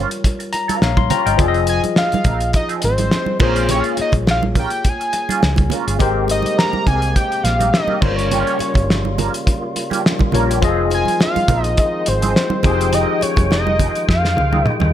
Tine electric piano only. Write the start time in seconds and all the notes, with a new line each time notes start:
Already playing: G3 F4 A#4 C#5
0.53 A#5
0.82 C#5 F5
0.97 C6
1.11 G5 A#5
1.26 D#5 G5
1.37 F3 F4 G#4
1.41 D5
1.48 D#5
3.39 A#3 F4 G#4 C#5
5.99 G#3 G4 A#4 C5
8.01 G3 F4 A#4 C#5
10.33 G3 F4 A#4 C#5
10.61 F3 F4 G#4 D#5
12.63 F3 D#4 G4 G#4